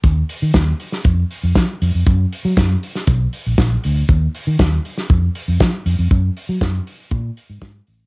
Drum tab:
HH |x-o-x-o-x-o-x-o-|x-o-x-o-x-o-x-o-|x-o-x-o-x-o-x-o-|x-o-x-o-x-o-x-o-|
SD |----o--o----o---|----o--o----o---|----o--o----o---|----o-------o---|
BD |o---o---o---o---|o---o---o---o---|o---o---o---o---|o---o---o---o---|